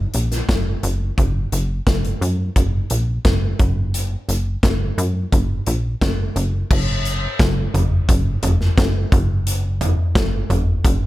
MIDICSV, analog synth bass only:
0, 0, Header, 1, 2, 480
1, 0, Start_track
1, 0, Key_signature, 6, "major"
1, 0, Tempo, 690449
1, 820, Time_signature, 4, 2, 24, 8
1, 7692, End_track
2, 0, Start_track
2, 0, Title_t, "Analog synth bass"
2, 0, Program_c, 0, 38
2, 101, Note_on_c, 0, 34, 76
2, 298, Note_off_c, 0, 34, 0
2, 339, Note_on_c, 0, 30, 89
2, 536, Note_off_c, 0, 30, 0
2, 580, Note_on_c, 0, 30, 93
2, 777, Note_off_c, 0, 30, 0
2, 818, Note_on_c, 0, 30, 94
2, 1016, Note_off_c, 0, 30, 0
2, 1060, Note_on_c, 0, 30, 86
2, 1257, Note_off_c, 0, 30, 0
2, 1298, Note_on_c, 0, 30, 92
2, 1496, Note_off_c, 0, 30, 0
2, 1539, Note_on_c, 0, 42, 89
2, 1736, Note_off_c, 0, 42, 0
2, 1780, Note_on_c, 0, 30, 89
2, 1977, Note_off_c, 0, 30, 0
2, 2022, Note_on_c, 0, 34, 78
2, 2218, Note_off_c, 0, 34, 0
2, 2259, Note_on_c, 0, 30, 86
2, 2456, Note_off_c, 0, 30, 0
2, 2499, Note_on_c, 0, 30, 92
2, 2893, Note_off_c, 0, 30, 0
2, 2980, Note_on_c, 0, 30, 84
2, 3177, Note_off_c, 0, 30, 0
2, 3219, Note_on_c, 0, 30, 103
2, 3416, Note_off_c, 0, 30, 0
2, 3461, Note_on_c, 0, 42, 97
2, 3657, Note_off_c, 0, 42, 0
2, 3701, Note_on_c, 0, 30, 88
2, 3898, Note_off_c, 0, 30, 0
2, 3941, Note_on_c, 0, 34, 84
2, 4138, Note_off_c, 0, 34, 0
2, 4181, Note_on_c, 0, 30, 96
2, 4378, Note_off_c, 0, 30, 0
2, 4420, Note_on_c, 0, 30, 93
2, 4617, Note_off_c, 0, 30, 0
2, 4662, Note_on_c, 0, 30, 96
2, 5055, Note_off_c, 0, 30, 0
2, 5140, Note_on_c, 0, 30, 109
2, 5337, Note_off_c, 0, 30, 0
2, 5381, Note_on_c, 0, 30, 91
2, 5578, Note_off_c, 0, 30, 0
2, 5623, Note_on_c, 0, 30, 103
2, 5819, Note_off_c, 0, 30, 0
2, 5860, Note_on_c, 0, 30, 93
2, 6057, Note_off_c, 0, 30, 0
2, 6101, Note_on_c, 0, 30, 106
2, 6297, Note_off_c, 0, 30, 0
2, 6342, Note_on_c, 0, 30, 102
2, 6931, Note_off_c, 0, 30, 0
2, 7059, Note_on_c, 0, 30, 100
2, 7256, Note_off_c, 0, 30, 0
2, 7299, Note_on_c, 0, 30, 97
2, 7496, Note_off_c, 0, 30, 0
2, 7540, Note_on_c, 0, 30, 103
2, 7692, Note_off_c, 0, 30, 0
2, 7692, End_track
0, 0, End_of_file